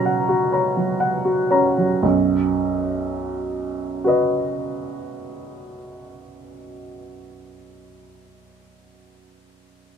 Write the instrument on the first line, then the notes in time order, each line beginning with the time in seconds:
upright piano
Already playing: B2 F#3 C#4 F#4 C#5 A#5
0.06 F#5
0.29 F#4
0.52 C#5 A#5
0.77 F#3
1.00 F#5
1.25 F#4
1.50 C#4 C#5 A#5
1.78 F#3
2.03 B1 F#2
4.04 F#4 B4 D#5